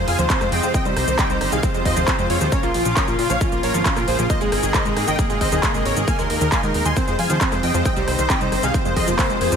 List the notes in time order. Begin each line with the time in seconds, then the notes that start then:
0.08 F2 C3 F3 G#3 F4 F5 G#5, open hi-hat
0.19 D#2 F3 C5, closed hi-hat, shaker
0.30 C3 F3 G#3 C4 F4 C5, kick, clap, closed hi-hat, shaker
0.41 F2 G#3 C5, cross-stick, clap, closed hi-hat, shaker
0.52 F2 C3 F3 G#3 F4 D#5 G5, open hi-hat
0.63 F2 F3 C5, closed hi-hat, shaker
0.74 C3 D#3 G3 C4 D#4 D#5 G5, kick, closed hi-hat, shaker
0.85 C2 G3 C5, closed hi-hat, shaker
0.96 C2 C3 D#3 G3 D#4 C5, cross-stick, open hi-hat
1.08 C2 D#3 C5, closed hi-hat, shaker
1.19 C3 D#3 G3 C4 D#4 D#5 G5, kick, clap, closed hi-hat, shaker
1.30 C2 G3 C5, closed hi-hat, shaker
1.41 G1 C3 D#3 G3 D#4 C5, cross-stick, open hi-hat
1.52 C2 D#3 G#4 F5, closed hi-hat, shaker
1.63 C3 F3 G#3 C4 F4 C5, kick, closed hi-hat, shaker
1.74 F2 G#3 C5, closed hi-hat, shaker
1.85 F2 C3 F3 G#3 F4 C5 D#5, kick, open hi-hat
1.97 D#2 F3 C5, closed hi-hat, shaker
2.08 C3 F3 G#3 C4 F4 C5, kick, clap, closed hi-hat, shaker
2.19 F2 G#3 C5, closed hi-hat, shaker
2.30 F2 C3 F3 G#3 F4 C#5, open hi-hat
2.41 D#2 F3 C5, closed hi-hat, shaker
2.52 C#3 F3 A#3 C#4 F4 A#4 C#5, kick, closed hi-hat, shaker
2.63 A#1 A#3 F4, closed hi-hat, shaker
2.74 A#1 C#3 F3 A#3 F4, open hi-hat
2.85 A#1 F3 F4, closed hi-hat, shaker
2.97 C#3 F3 A#3 C#4 F4 A#4 C#5, kick, clap, closed hi-hat, shaker
3.08 A#1 A#3 F4, closed hi-hat, shaker
3.19 A#2 C#3 F3 A#3 F4, open hi-hat
3.30 A#1 F3 C#5 F5, closed hi-hat, shaker
3.41 C#3 F3 A#3 C#4 F4, kick, closed hi-hat, shaker
3.52 A#1 A#3 F4, closed hi-hat, shaker
3.63 A#1 C#3 F3 A#3 F4 A#4 C#5, open hi-hat
3.74 G#1 F3 F4, closed hi-hat, shaker
3.85 C#3 F3 A#3 C#4 F4, kick, clap, closed hi-hat, shaker
3.97 A#1 A#3 F4, cross-stick, clap, closed hi-hat, shaker
4.08 A#1 C#3 F3 A#3 F4 G#4 C5, open hi-hat
4.19 A#1 F3 F4, closed hi-hat, shaker
4.30 C3 G#3 A#3 D#4 C5 D#5, kick, closed hi-hat, shaker
4.41 G#1 G#3 G#4, closed hi-hat, shaker
4.52 G#1 C3 G#3 A#3 D#4 G#4, cross-stick, open hi-hat
4.63 G#1 D#3 G#4, closed hi-hat, shaker
4.74 C3 G#3 A#3 D#4 C5 D#5, kick, clap, closed hi-hat, shaker
4.85 G#1 G#3 G#4, closed hi-hat, shaker
4.97 G#2 C3 G#3 A#3 D#4 G#4, cross-stick, open hi-hat
5.08 G#1 D#3 D#5 G5, closed hi-hat, shaker
5.19 C3 G#3 A#3 D#4 G#4, kick, closed hi-hat, shaker
5.30 G#1 G#3 G#4, closed hi-hat, shaker
5.41 G#1 C3 G#3 A#3 D#4 C5 D#5, kick, open hi-hat
5.52 D#1 D#3 G#4, closed hi-hat, shaker
5.63 C3 G#3 A#3 D#4 G#4, kick, clap, closed hi-hat, shaker
5.74 G#1 G#3 G#4, closed hi-hat, shaker
5.85 G#1 C3 G#3 A#3 D#4 A#4 C#5, open hi-hat
5.97 G#1 D#3 G#4, closed hi-hat, shaker
6.08 A#2 D#3 G#3 A#3 D#4 F5 G#5, kick, closed hi-hat, shaker
6.19 D#2 G#3 A#4, closed hi-hat, shaker
6.30 D#2 A#2 D#3 G#3 D#4 A#4, open hi-hat
6.41 D#2 D#3 A#4, closed hi-hat, shaker
6.52 A#2 D#3 G#3 A#3 D#4 F5 G#5, kick, clap, closed hi-hat, shaker
6.63 D#2 G#3 A#4, closed hi-hat, shaker
6.74 D#1 A#2 D#3 G#3 D#4 A#4, open hi-hat
6.85 D#2 D#3 G#5 C6, closed hi-hat, shaker
6.97 C3 F3 G#3 C4 F4 C5, kick, closed hi-hat, shaker
7.08 F2 G#3 C5, closed hi-hat, shaker
7.19 F2 C3 F3 G#3 F4 F5 G#5, open hi-hat
7.30 D#2 F3 C5, closed hi-hat, shaker
7.41 C3 F3 G#3 C4 F4 C5, kick, clap, closed hi-hat, shaker
7.52 F2 G#3 C5, cross-stick, clap, closed hi-hat, shaker
7.63 F2 C3 F3 G#3 F4 D#5 G5, open hi-hat
7.74 F2 F3 C5, closed hi-hat, shaker
7.85 C3 D#3 G3 C4 D#4 D#5 G5, kick, closed hi-hat, shaker
7.97 C2 G3 C5, closed hi-hat, shaker
8.08 C2 C3 D#3 G3 D#4 C5, cross-stick, open hi-hat
8.19 C2 D#3 C5, closed hi-hat, shaker
8.30 C3 D#3 G3 C4 D#4 D#5 G5, kick, clap, closed hi-hat, shaker
8.41 C2 G3 C5, closed hi-hat, shaker
8.52 G1 C3 D#3 G3 D#4 C5, cross-stick, open hi-hat
8.63 C2 D#3 G#4 F5, closed hi-hat, shaker
8.74 C3 F3 G#3 C4 F4 C5, kick, closed hi-hat, swell, shaker
8.85 F2 G#3 C5, closed hi-hat, shaker
8.97 F2 C3 F3 G#3 F4 C5 D#5, kick, open hi-hat
9.08 F1 F3 C5, closed hi-hat, shaker
9.19 C3 F3 G#3 C4 F4 C5, kick, clap, open hi-hat, shaker
9.30 F1 G#3 C5, closed hi-hat, shaker
9.41 F2 C3 F3 G#3 F4 G#4 C5, open hi-hat
9.52 F2 F3 C5, closed hi-hat, shaker